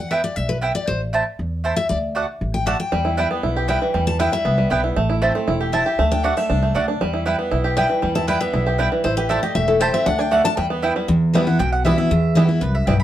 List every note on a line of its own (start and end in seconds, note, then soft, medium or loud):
0.00 0.18 E2 medium
0.00 0.11 F#5 medium
0.11 0.20 B3 medium
0.11 0.20 E4 loud
0.11 0.21 B4 loud
0.11 0.23 E5 medium
0.11 0.21 G5 loud
0.24 0.36 D5 loud
0.36 0.69 B1 medium
0.36 0.49 E5 loud
0.49 0.57 B4 loud
0.61 0.71 B3 medium
0.61 0.71 E4 loud
0.61 0.72 B4 medium
0.61 0.72 G5 medium
0.75 0.87 D5 loud
0.87 1.20 A1 medium
0.87 1.00 C5 medium
1.13 1.22 A3 medium
1.13 1.23 E4 loud
1.13 1.23 C5 medium
1.13 1.23 A5 loud
1.39 1.71 E2 medium
1.64 1.73 A3 medium
1.64 1.74 E4 medium
1.64 1.74 C5 loud
1.64 1.74 A5 medium
1.76 1.89 E5 loud
1.89 2.23 D2 medium
1.89 1.97 D5 loud
2.15 2.24 A3 medium
2.15 2.25 F#4 medium
2.15 2.25 D5 medium
2.15 2.25 F#5 medium
2.41 2.74 A1 medium
2.54 2.66 G5 medium
2.66 2.75 A3 medium
2.66 2.76 F#4 medium
2.66 2.76 D5 medium
2.66 2.76 F#5 medium
2.66 2.79 A5 loud
2.80 3.39 G5 medium
2.92 3.25 E2 medium
2.92 3.17 G3 medium
3.05 3.43 E4 medium
3.17 3.54 G3 medium
3.17 3.27 B3 medium
3.17 3.27 E4 loud
3.17 3.27 B4 medium
3.17 3.27 G5 loud
3.31 3.66 B3 medium
3.43 3.76 B1 medium
3.43 4.19 E4 medium
3.56 3.92 G4 medium
3.68 3.93 G3 medium
3.68 3.77 B3 medium
3.68 3.78 E4 medium
3.68 3.78 B4 medium
3.68 4.04 G5 medium
3.68 3.78 G5 medium
3.82 4.17 E3 medium
3.94 4.27 E2 loud
3.94 4.30 G3 medium
4.07 4.19 A5 loud
4.19 4.29 B3 loud
4.19 4.56 E4 medium
4.19 4.29 E4 loud
4.19 4.29 B4 loud
4.19 4.32 G5 medium
4.19 4.29 G5 loud
4.32 4.57 G3 medium
4.32 4.68 E5 loud
4.45 4.67 C2 medium
4.45 4.70 B3 medium
4.58 4.94 G3 medium
4.70 4.93 B1 medium
4.70 4.80 B3 medium
4.70 4.96 B3 medium
4.70 4.80 E4 medium
4.70 4.80 B4 medium
4.70 4.80 G5 loud
4.84 4.96 E4 medium
4.96 5.29 A1 medium
4.96 5.32 A3 medium
5.10 5.45 E4 medium
5.22 5.31 A3 loud
5.22 5.58 C4 medium
5.22 5.31 E4 loud
5.22 5.31 C5 medium
5.22 5.32 A5 medium
5.35 5.71 A3 medium
5.48 5.80 E1 medium
5.48 5.72 E4 medium
5.61 5.85 G4 medium
5.72 5.82 A3 medium
5.72 5.82 E4 medium
5.72 5.99 E4 medium
5.72 5.82 C5 loud
5.72 6.09 E5 medium
5.72 5.83 A5 medium
5.86 5.99 G4 medium
5.99 6.31 D2 medium
5.99 6.34 A3 medium
6.11 6.23 D4 medium
6.11 6.24 G5 medium
6.24 6.33 A3 medium
6.24 6.48 D4 medium
6.24 6.33 F#4 loud
6.24 6.33 D5 loud
6.24 6.37 F#5 medium
6.24 6.34 F#5 loud
6.37 6.61 A3 medium
6.37 6.75 E5 loud
6.50 6.71 C2 medium
6.50 6.74 D4 medium
6.62 6.98 A3 medium
6.75 6.97 D2 medium
6.75 6.84 A3 medium
6.75 6.87 D4 medium
6.75 6.84 F#4 medium
6.75 6.84 D5 loud
6.75 6.85 F#5 medium
6.88 7.01 D4 medium
7.01 7.33 E2 medium
7.01 7.25 G3 medium
7.14 7.51 E4 medium
7.26 7.62 G3 medium
7.26 7.35 B3 medium
7.26 7.35 E4 medium
7.26 7.35 B4 loud
7.26 7.36 G5 loud
7.39 7.74 B3 medium
7.51 7.84 B1 medium
7.51 8.15 E4 medium
7.64 8.00 G4 medium
7.77 8.01 G3 medium
7.77 7.86 B3 medium
7.77 7.86 E4 medium
7.77 7.86 B4 medium
7.77 8.13 G5 medium
7.77 7.87 G5 loud
7.89 8.25 E3 medium
8.02 8.35 E2 loud
8.02 8.27 G3 medium
8.15 8.51 E4 medium
8.15 8.28 A5 loud
8.27 8.64 G3 medium
8.27 8.37 B3 medium
8.27 8.37 E4 medium
8.27 8.37 B4 loud
8.27 8.41 G5 medium
8.27 8.38 G5 loud
8.41 8.77 B3 medium
8.41 8.76 E5 loud
8.54 8.86 B1 loud
8.54 8.89 E4 medium
8.67 9.02 G4 medium
8.78 9.05 G3 medium
8.78 8.88 B3 medium
8.78 8.88 E4 medium
8.78 8.88 B4 loud
8.78 8.89 G5 medium
8.92 9.05 E3 medium
9.04 9.37 A1 medium
9.04 9.40 E4 medium
9.04 9.16 C5 medium
9.17 9.42 G4 medium
9.17 9.29 B4 medium
9.29 9.39 A3 loud
9.29 9.54 A3 medium
9.29 9.39 E4 loud
9.29 9.39 C5 medium
9.29 9.42 D5 medium
9.29 9.39 A5 loud
9.43 9.79 G4 medium
9.43 9.55 D#5 medium
9.55 9.88 E1 medium
9.55 9.91 A3 medium
9.55 9.68 E5 loud
9.68 10.04 E4 medium
9.68 9.81 A4 medium
9.80 9.90 A3 medium
9.80 9.90 E4 loud
9.80 10.06 G4 medium
9.80 9.93 C5 medium
9.80 9.90 C5 medium
9.80 9.90 A5 loud
9.94 10.06 C4 medium
9.94 10.06 E5 loud
10.06 10.39 D2 medium
10.06 10.18 D4 medium
10.06 10.19 F#5 loud
10.19 10.43 D4 medium
10.19 10.32 G5 loud
10.31 10.41 A3 loud
10.31 10.57 A3 medium
10.31 10.41 F#4 medium
10.31 10.41 D5 loud
10.31 10.44 F#5 medium
10.31 10.41 F#5 medium
10.44 10.57 D4 medium
10.44 10.57 A5 loud
10.57 10.90 E2 medium
10.57 10.93 G3 medium
10.57 10.65 G5 loud
10.70 11.06 B3 medium
10.82 10.92 B3 medium
10.82 11.09 E4 medium
10.82 10.92 E4 medium
10.82 10.92 B4 loud
10.82 10.93 G5 medium
10.96 11.09 G3 medium
11.08 11.57 E2 medium
11.08 11.41 E2 medium
11.33 11.46 E3 medium
11.33 11.47 G3 medium
11.33 11.40 G3 medium
11.33 11.47 B3 loud
11.33 11.40 B3 medium
11.33 11.41 E4 medium
11.33 11.46 E4 medium
11.47 11.60 B3 medium
11.47 11.59 E4 medium
11.47 11.59 F#5 medium
11.59 11.92 B1 medium
11.59 12.08 B2 medium
11.59 11.72 G5 loud
11.72 11.85 F#5 medium
11.85 11.97 E3 medium
11.85 11.98 G3 medium
11.85 11.91 G3 medium
11.85 11.98 B3 medium
11.85 11.91 B3 medium
11.85 11.92 E4 medium
11.85 11.97 E4 loud
11.85 11.97 E5 medium
11.98 12.11 B3 medium
11.98 12.10 E4 medium
11.98 12.33 E5 loud
12.11 12.43 E2 medium
12.11 12.59 E2 medium
12.35 12.48 E3 medium
12.35 12.48 G3 medium
12.35 12.42 G3 medium
12.35 12.49 B3 medium
12.35 12.42 B3 medium
12.35 12.47 E4 medium
12.35 12.42 E4 medium
12.48 12.62 B3 medium
12.48 12.61 E4 medium
12.61 12.83 C2 medium
12.61 12.86 F#2 medium
12.61 12.74 B4 medium
12.75 12.87 E5 medium
12.87 13.04 B1 loud
12.87 13.04 G2 medium
12.87 12.93 G3 medium
12.87 12.93 B3 medium
12.87 12.94 E4 medium
12.87 12.99 G5 medium
13.00 13.04 B5 medium